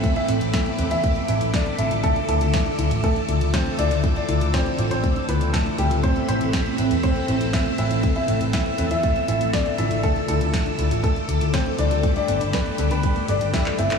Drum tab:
HH |xxxxxxxxxxxxxxxx|xxxxxxxxxxxxxxxx|xxxxxxxxxxxxxxxx|xxxxxxxxxxxxxxxx|
CP |----------------|----------------|----------------|----------------|
SD |----o-------o---|----o-------o---|----o-------o---|----o-------o---|
BD |o---o---o---o---|o---o---o---o---|o---o---o---o---|o---o---o---o---|

HH |xxxxxxxxxxxxxxxx|xxxxxxxxxxxxxxxx|xxxxxxxxxxxxxxxx|
CP |----------------|----------------|-------------x-x|
SD |----o-------o---|----o-------o---|----o-------o---|
BD |o---o---o---o---|o---o---o---o---|o---o---o---o---|